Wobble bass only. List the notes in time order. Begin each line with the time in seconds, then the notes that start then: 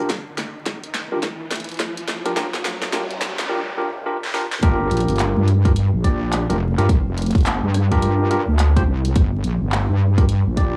4.63 G1
4.91 A#1
5.08 G1
5.37 G2
5.93 A#1
6.50 F1
6.78 G2
6.89 C2
7.06 F1
7.35 G1
7.63 G2
8.48 D2
8.87 C2
9.16 G1
9.44 A#1
9.61 G1
9.90 G2
10.46 A#1